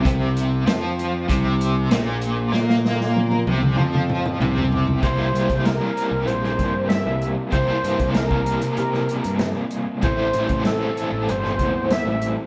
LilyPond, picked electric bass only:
\new Staff \with { instrumentName = "Picked electric bass" } { \clef bass \time 4/4 \key c \mixolydian \tempo 4 = 96 c,4 f,4 c,4 bes,,4 | bes,4. c,8 f,4 c,4 | c,8 c,16 c,8 r8 c,16 bes,,8 g,8. c,8 r16 | c,16 r16 g,16 c,4 c16 c8 r16 g,8 r8. |
a,,8 a,,16 a,,8 r8 a,,16 g,,8 e,8. a,,8 r16 | }